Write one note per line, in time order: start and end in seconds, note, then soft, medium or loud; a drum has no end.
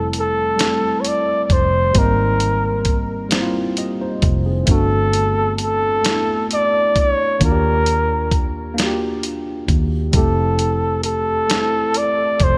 0.00 1.46 F1 medium
0.00 0.37 G3 medium
0.00 0.38 A3 medium
0.00 0.39 C4 medium
0.00 0.43 E4 medium
0.00 0.10 A4 medium
0.13 closed hi-hat medium
0.19 1.02 A4 medium
0.56 1.73 G3 medium
0.56 1.74 A3 medium
0.56 1.75 C4 medium
0.56 closed hi-hat medium
0.61 1.76 E4 medium
0.61 snare loud
1.00 1.09 C#5 medium
1.05 1.44 D5 loud
1.05 closed hi-hat medium
1.44 1.54 D5 medium
1.50 1.91 F1 medium
1.50 2.00 C5 medium
1.50 kick medium
1.50 closed hi-hat medium
1.93 4.18 G#1 loud
1.93 3.10 G3 medium
1.93 3.11 A#3 medium
1.93 kick loud
1.93 closed hi-hat medium
1.97 3.12 C4 medium
1.97 3.12 D#4 medium
1.97 2.99 A#4 medium
2.40 closed hi-hat medium
2.85 kick medium
2.85 closed hi-hat medium
3.29 4.46 G3 medium
3.29 4.47 A#3 medium
3.29 3.77 C4 medium
3.29 snare loud
3.29 closed hi-hat medium
3.35 3.39 E4 medium
3.42 3.82 F4 medium
3.77 3.99 G4 soft
3.77 3.99 D#5 medium
3.77 closed hi-hat medium
4.01 4.44 D#4 medium
4.01 4.44 C5 medium
4.22 4.64 F1 medium
4.22 kick medium
4.22 closed hi-hat soft
4.46 4.89 C4 medium
4.46 4.89 G#4 medium
4.66 6.96 G1 loud
4.66 5.82 A3 medium
4.66 5.83 B3 medium
4.66 5.84 D4 medium
4.66 kick loud
4.66 closed hi-hat medium
4.71 5.85 F#4 medium
4.71 5.57 A4 loud
5.13 closed hi-hat soft
5.58 6.47 A4 loud
5.58 closed hi-hat soft
6.02 7.18 A3 medium
6.02 7.20 B3 medium
6.02 7.20 D4 medium
6.02 closed hi-hat medium
6.06 7.21 E4 medium
6.06 snare loud
6.51 7.01 D5 loud
6.51 closed hi-hat medium
6.96 7.37 C#2 medium
6.96 kick medium
6.96 closed hi-hat soft
7.00 7.43 C#5 loud
7.39 9.64 D#2 medium
7.39 8.55 A#3 medium
7.39 8.56 D4 medium
7.39 8.57 F4 medium
7.39 kick loud
7.39 closed hi-hat medium
7.44 7.49 F#4 medium
7.44 8.40 A#4 medium
7.52 8.61 G4 medium
7.86 closed hi-hat soft
8.31 kick medium
8.31 closed hi-hat soft
8.74 9.91 A#3 medium
8.74 9.92 D4 medium
8.78 9.93 F4 medium
8.78 8.85 F#4 medium
8.78 snare loud
8.78 closed hi-hat medium
8.86 9.97 G4 medium
9.23 closed hi-hat medium
9.68 10.10 D#2 medium
9.68 kick medium
9.68 closed hi-hat soft
10.11 12.37 F1 loud
10.11 10.19 G3 medium
10.11 11.28 C4 medium
10.11 11.29 E4 medium
10.11 11.01 A4 medium
10.11 kick loud
10.11 closed hi-hat medium
10.17 11.31 A3 medium
10.17 11.30 G4 medium
10.59 closed hi-hat soft
11.03 11.99 A4 medium
11.03 closed hi-hat medium
11.48 12.58 A3 medium
11.48 12.58 C4 medium
11.48 snare loud
11.48 closed hi-hat medium
11.52 12.58 E4 medium
11.94 12.45 D5 loud
11.94 closed hi-hat medium
12.40 12.58 F1 medium
12.40 12.58 C5 loud
12.40 kick medium
12.40 closed hi-hat medium